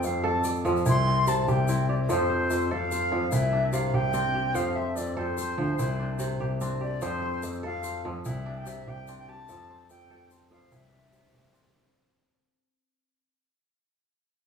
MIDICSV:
0, 0, Header, 1, 5, 480
1, 0, Start_track
1, 0, Key_signature, -1, "major"
1, 0, Tempo, 410678
1, 2444, Time_signature, 12, 3, 24, 8
1, 16908, End_track
2, 0, Start_track
2, 0, Title_t, "Flute"
2, 0, Program_c, 0, 73
2, 65, Note_on_c, 0, 77, 73
2, 292, Note_on_c, 0, 81, 75
2, 309, Note_off_c, 0, 77, 0
2, 528, Note_off_c, 0, 81, 0
2, 1041, Note_on_c, 0, 84, 98
2, 1499, Note_on_c, 0, 81, 89
2, 1516, Note_off_c, 0, 84, 0
2, 1653, Note_off_c, 0, 81, 0
2, 1653, Note_on_c, 0, 81, 56
2, 1738, Note_on_c, 0, 79, 72
2, 1755, Note_off_c, 0, 81, 0
2, 2200, Note_off_c, 0, 79, 0
2, 2207, Note_on_c, 0, 74, 74
2, 2277, Note_off_c, 0, 74, 0
2, 2452, Note_on_c, 0, 72, 86
2, 3176, Note_on_c, 0, 77, 92
2, 3194, Note_off_c, 0, 72, 0
2, 3879, Note_off_c, 0, 77, 0
2, 3886, Note_on_c, 0, 76, 95
2, 4373, Note_on_c, 0, 77, 87
2, 4390, Note_off_c, 0, 76, 0
2, 4615, Note_on_c, 0, 79, 102
2, 4632, Note_off_c, 0, 77, 0
2, 5321, Note_on_c, 0, 77, 90
2, 5339, Note_off_c, 0, 79, 0
2, 5554, Note_on_c, 0, 76, 82
2, 5571, Note_off_c, 0, 77, 0
2, 5793, Note_on_c, 0, 74, 77
2, 5810, Note_off_c, 0, 76, 0
2, 6033, Note_off_c, 0, 74, 0
2, 6040, Note_on_c, 0, 72, 92
2, 7602, Note_off_c, 0, 72, 0
2, 7971, Note_on_c, 0, 74, 89
2, 8206, Note_on_c, 0, 72, 100
2, 8224, Note_off_c, 0, 74, 0
2, 8686, Note_off_c, 0, 72, 0
2, 8941, Note_on_c, 0, 77, 102
2, 9380, Note_off_c, 0, 77, 0
2, 9650, Note_on_c, 0, 76, 94
2, 9981, Note_on_c, 0, 81, 72
2, 9999, Note_off_c, 0, 76, 0
2, 10026, Note_on_c, 0, 79, 93
2, 10043, Note_off_c, 0, 81, 0
2, 10154, Note_on_c, 0, 76, 94
2, 10172, Note_off_c, 0, 79, 0
2, 10394, Note_on_c, 0, 79, 101
2, 10411, Note_off_c, 0, 76, 0
2, 10726, Note_off_c, 0, 79, 0
2, 10733, Note_on_c, 0, 79, 94
2, 10858, Note_on_c, 0, 81, 101
2, 10875, Note_off_c, 0, 79, 0
2, 11562, Note_off_c, 0, 81, 0
2, 11569, Note_on_c, 0, 79, 103
2, 12014, Note_off_c, 0, 79, 0
2, 12291, Note_on_c, 0, 77, 90
2, 12542, Note_on_c, 0, 76, 97
2, 12560, Note_off_c, 0, 77, 0
2, 13494, Note_off_c, 0, 76, 0
2, 16908, End_track
3, 0, Start_track
3, 0, Title_t, "Kora"
3, 0, Program_c, 1, 46
3, 0, Note_on_c, 1, 53, 90
3, 0, Note_on_c, 1, 60, 81
3, 0, Note_on_c, 1, 64, 72
3, 0, Note_on_c, 1, 67, 65
3, 0, Note_on_c, 1, 72, 62
3, 275, Note_on_c, 1, 69, 81
3, 517, Note_on_c, 1, 74, 67
3, 743, Note_off_c, 1, 53, 0
3, 757, Note_on_c, 1, 53, 79
3, 827, Note_off_c, 1, 64, 0
3, 964, Note_off_c, 1, 67, 0
3, 1002, Note_on_c, 1, 64, 70
3, 1063, Note_off_c, 1, 53, 0
3, 1177, Note_off_c, 1, 60, 0
3, 1177, Note_off_c, 1, 72, 0
3, 1252, Note_on_c, 1, 60, 59
3, 1486, Note_on_c, 1, 48, 76
3, 1733, Note_on_c, 1, 67, 67
3, 1812, Note_off_c, 1, 74, 0
3, 1815, Note_off_c, 1, 69, 0
3, 1965, Note_off_c, 1, 64, 0
3, 1966, Note_off_c, 1, 60, 0
3, 1970, Note_on_c, 1, 64, 67
3, 1971, Note_on_c, 1, 60, 78
3, 2205, Note_off_c, 1, 67, 0
3, 2210, Note_on_c, 1, 67, 68
3, 2452, Note_on_c, 1, 53, 96
3, 2503, Note_off_c, 1, 48, 0
3, 2682, Note_on_c, 1, 72, 67
3, 3168, Note_on_c, 1, 69, 85
3, 3402, Note_off_c, 1, 72, 0
3, 3407, Note_on_c, 1, 72, 66
3, 3631, Note_off_c, 1, 53, 0
3, 3645, Note_on_c, 1, 53, 71
3, 3715, Note_off_c, 1, 64, 0
3, 3861, Note_off_c, 1, 67, 0
3, 3877, Note_on_c, 1, 64, 68
3, 3943, Note_off_c, 1, 53, 0
3, 4075, Note_off_c, 1, 60, 0
3, 4120, Note_on_c, 1, 62, 62
3, 4357, Note_on_c, 1, 48, 85
3, 4602, Note_on_c, 1, 67, 74
3, 4708, Note_off_c, 1, 69, 0
3, 4795, Note_off_c, 1, 72, 0
3, 4831, Note_off_c, 1, 62, 0
3, 4835, Note_on_c, 1, 60, 85
3, 4835, Note_on_c, 1, 62, 73
3, 5070, Note_off_c, 1, 67, 0
3, 5074, Note_on_c, 1, 67, 67
3, 5309, Note_on_c, 1, 53, 95
3, 5379, Note_off_c, 1, 64, 0
3, 5383, Note_off_c, 1, 48, 0
3, 5560, Note_on_c, 1, 72, 67
3, 6038, Note_on_c, 1, 69, 91
3, 6277, Note_off_c, 1, 72, 0
3, 6281, Note_on_c, 1, 72, 67
3, 6505, Note_off_c, 1, 53, 0
3, 6519, Note_on_c, 1, 53, 83
3, 6725, Note_off_c, 1, 67, 0
3, 6768, Note_on_c, 1, 64, 68
3, 6798, Note_off_c, 1, 62, 0
3, 6823, Note_off_c, 1, 53, 0
3, 6939, Note_off_c, 1, 60, 0
3, 7004, Note_on_c, 1, 62, 64
3, 7240, Note_on_c, 1, 48, 84
3, 7484, Note_on_c, 1, 67, 77
3, 7578, Note_off_c, 1, 69, 0
3, 7669, Note_off_c, 1, 72, 0
3, 7721, Note_off_c, 1, 62, 0
3, 7726, Note_on_c, 1, 62, 69
3, 7727, Note_on_c, 1, 60, 88
3, 7951, Note_off_c, 1, 67, 0
3, 7956, Note_on_c, 1, 67, 64
3, 8202, Note_on_c, 1, 53, 91
3, 8263, Note_off_c, 1, 48, 0
3, 8272, Note_off_c, 1, 64, 0
3, 8437, Note_on_c, 1, 72, 72
3, 8918, Note_on_c, 1, 69, 88
3, 9151, Note_off_c, 1, 72, 0
3, 9156, Note_on_c, 1, 72, 68
3, 9393, Note_off_c, 1, 53, 0
3, 9407, Note_on_c, 1, 53, 73
3, 9607, Note_off_c, 1, 67, 0
3, 9647, Note_on_c, 1, 64, 70
3, 9689, Note_off_c, 1, 62, 0
3, 9704, Note_off_c, 1, 53, 0
3, 9831, Note_off_c, 1, 60, 0
3, 9884, Note_on_c, 1, 62, 67
3, 10126, Note_on_c, 1, 48, 77
3, 10374, Note_on_c, 1, 67, 66
3, 10458, Note_off_c, 1, 69, 0
3, 10544, Note_off_c, 1, 72, 0
3, 10610, Note_off_c, 1, 62, 0
3, 10613, Note_on_c, 1, 60, 83
3, 10615, Note_on_c, 1, 62, 72
3, 10847, Note_off_c, 1, 67, 0
3, 10852, Note_on_c, 1, 67, 70
3, 11092, Note_on_c, 1, 53, 87
3, 11144, Note_off_c, 1, 48, 0
3, 11162, Note_off_c, 1, 64, 0
3, 11334, Note_on_c, 1, 72, 70
3, 11807, Note_on_c, 1, 69, 89
3, 12043, Note_off_c, 1, 72, 0
3, 12047, Note_on_c, 1, 72, 73
3, 12268, Note_off_c, 1, 53, 0
3, 12282, Note_on_c, 1, 53, 82
3, 12503, Note_off_c, 1, 67, 0
3, 12525, Note_on_c, 1, 64, 64
3, 12578, Note_off_c, 1, 62, 0
3, 12584, Note_off_c, 1, 53, 0
3, 12717, Note_off_c, 1, 60, 0
3, 12761, Note_on_c, 1, 62, 57
3, 13001, Note_on_c, 1, 48, 76
3, 13247, Note_on_c, 1, 67, 69
3, 13347, Note_off_c, 1, 69, 0
3, 13435, Note_off_c, 1, 72, 0
3, 13473, Note_off_c, 1, 62, 0
3, 13474, Note_on_c, 1, 60, 83
3, 13478, Note_on_c, 1, 62, 68
3, 13716, Note_off_c, 1, 67, 0
3, 13721, Note_on_c, 1, 67, 60
3, 14024, Note_off_c, 1, 48, 0
3, 14357, Note_off_c, 1, 64, 0
3, 15372, Note_off_c, 1, 67, 0
3, 15441, Note_off_c, 1, 62, 0
3, 15578, Note_off_c, 1, 60, 0
3, 16908, End_track
4, 0, Start_track
4, 0, Title_t, "Grand piano"
4, 0, Program_c, 2, 0
4, 44, Note_on_c, 2, 41, 85
4, 258, Note_off_c, 2, 41, 0
4, 281, Note_on_c, 2, 41, 88
4, 711, Note_off_c, 2, 41, 0
4, 764, Note_on_c, 2, 41, 93
4, 872, Note_off_c, 2, 41, 0
4, 1003, Note_on_c, 2, 36, 101
4, 1647, Note_off_c, 2, 36, 0
4, 1729, Note_on_c, 2, 36, 86
4, 2370, Note_off_c, 2, 36, 0
4, 2442, Note_on_c, 2, 41, 96
4, 2872, Note_off_c, 2, 41, 0
4, 2924, Note_on_c, 2, 41, 89
4, 3139, Note_off_c, 2, 41, 0
4, 3167, Note_on_c, 2, 41, 84
4, 3595, Note_off_c, 2, 41, 0
4, 3640, Note_on_c, 2, 41, 93
4, 3749, Note_off_c, 2, 41, 0
4, 3885, Note_on_c, 2, 36, 103
4, 4528, Note_off_c, 2, 36, 0
4, 4598, Note_on_c, 2, 36, 89
4, 5244, Note_off_c, 2, 36, 0
4, 5317, Note_on_c, 2, 41, 89
4, 5749, Note_off_c, 2, 41, 0
4, 5801, Note_on_c, 2, 41, 82
4, 6017, Note_off_c, 2, 41, 0
4, 6037, Note_on_c, 2, 41, 89
4, 6469, Note_off_c, 2, 41, 0
4, 6523, Note_on_c, 2, 38, 94
4, 6631, Note_off_c, 2, 38, 0
4, 6768, Note_on_c, 2, 36, 106
4, 7410, Note_off_c, 2, 36, 0
4, 7484, Note_on_c, 2, 36, 86
4, 8127, Note_off_c, 2, 36, 0
4, 8208, Note_on_c, 2, 41, 94
4, 8635, Note_off_c, 2, 41, 0
4, 8686, Note_on_c, 2, 41, 90
4, 8900, Note_off_c, 2, 41, 0
4, 8929, Note_on_c, 2, 41, 94
4, 9356, Note_off_c, 2, 41, 0
4, 9407, Note_on_c, 2, 41, 100
4, 9513, Note_off_c, 2, 41, 0
4, 9651, Note_on_c, 2, 36, 112
4, 10292, Note_off_c, 2, 36, 0
4, 10365, Note_on_c, 2, 36, 88
4, 11009, Note_off_c, 2, 36, 0
4, 11087, Note_on_c, 2, 41, 94
4, 11515, Note_off_c, 2, 41, 0
4, 11571, Note_on_c, 2, 41, 89
4, 11783, Note_off_c, 2, 41, 0
4, 11813, Note_on_c, 2, 41, 83
4, 12238, Note_off_c, 2, 41, 0
4, 12285, Note_on_c, 2, 41, 91
4, 12393, Note_off_c, 2, 41, 0
4, 12526, Note_on_c, 2, 36, 104
4, 13169, Note_off_c, 2, 36, 0
4, 13248, Note_on_c, 2, 36, 83
4, 13890, Note_off_c, 2, 36, 0
4, 16908, End_track
5, 0, Start_track
5, 0, Title_t, "Drums"
5, 37, Note_on_c, 9, 82, 59
5, 154, Note_off_c, 9, 82, 0
5, 513, Note_on_c, 9, 82, 63
5, 630, Note_off_c, 9, 82, 0
5, 764, Note_on_c, 9, 82, 20
5, 881, Note_off_c, 9, 82, 0
5, 894, Note_on_c, 9, 82, 19
5, 1000, Note_off_c, 9, 82, 0
5, 1000, Note_on_c, 9, 82, 62
5, 1117, Note_off_c, 9, 82, 0
5, 1484, Note_on_c, 9, 82, 58
5, 1601, Note_off_c, 9, 82, 0
5, 1727, Note_on_c, 9, 82, 21
5, 1844, Note_off_c, 9, 82, 0
5, 1962, Note_on_c, 9, 82, 61
5, 2079, Note_off_c, 9, 82, 0
5, 2447, Note_on_c, 9, 82, 49
5, 2564, Note_off_c, 9, 82, 0
5, 2927, Note_on_c, 9, 82, 56
5, 3044, Note_off_c, 9, 82, 0
5, 3050, Note_on_c, 9, 82, 17
5, 3167, Note_off_c, 9, 82, 0
5, 3407, Note_on_c, 9, 82, 58
5, 3524, Note_off_c, 9, 82, 0
5, 3878, Note_on_c, 9, 82, 63
5, 3994, Note_off_c, 9, 82, 0
5, 4359, Note_on_c, 9, 82, 61
5, 4476, Note_off_c, 9, 82, 0
5, 4832, Note_on_c, 9, 82, 58
5, 4949, Note_off_c, 9, 82, 0
5, 5320, Note_on_c, 9, 82, 62
5, 5437, Note_off_c, 9, 82, 0
5, 5804, Note_on_c, 9, 82, 66
5, 5921, Note_off_c, 9, 82, 0
5, 6284, Note_on_c, 9, 82, 70
5, 6401, Note_off_c, 9, 82, 0
5, 6765, Note_on_c, 9, 82, 72
5, 6882, Note_off_c, 9, 82, 0
5, 7237, Note_on_c, 9, 82, 67
5, 7354, Note_off_c, 9, 82, 0
5, 7724, Note_on_c, 9, 82, 64
5, 7841, Note_off_c, 9, 82, 0
5, 8198, Note_on_c, 9, 82, 66
5, 8315, Note_off_c, 9, 82, 0
5, 8679, Note_on_c, 9, 82, 68
5, 8796, Note_off_c, 9, 82, 0
5, 8798, Note_on_c, 9, 82, 21
5, 8915, Note_off_c, 9, 82, 0
5, 9156, Note_on_c, 9, 82, 70
5, 9273, Note_off_c, 9, 82, 0
5, 9641, Note_on_c, 9, 82, 67
5, 9758, Note_off_c, 9, 82, 0
5, 10124, Note_on_c, 9, 82, 70
5, 10240, Note_off_c, 9, 82, 0
5, 10605, Note_on_c, 9, 82, 67
5, 10722, Note_off_c, 9, 82, 0
5, 11086, Note_on_c, 9, 82, 68
5, 11203, Note_off_c, 9, 82, 0
5, 11567, Note_on_c, 9, 82, 65
5, 11684, Note_off_c, 9, 82, 0
5, 12046, Note_on_c, 9, 82, 65
5, 12163, Note_off_c, 9, 82, 0
5, 12528, Note_on_c, 9, 82, 69
5, 12645, Note_off_c, 9, 82, 0
5, 12645, Note_on_c, 9, 82, 21
5, 12762, Note_off_c, 9, 82, 0
5, 13004, Note_on_c, 9, 82, 64
5, 13121, Note_off_c, 9, 82, 0
5, 13257, Note_on_c, 9, 82, 21
5, 13374, Note_off_c, 9, 82, 0
5, 13374, Note_on_c, 9, 82, 19
5, 13491, Note_off_c, 9, 82, 0
5, 13496, Note_on_c, 9, 82, 61
5, 13612, Note_off_c, 9, 82, 0
5, 16908, End_track
0, 0, End_of_file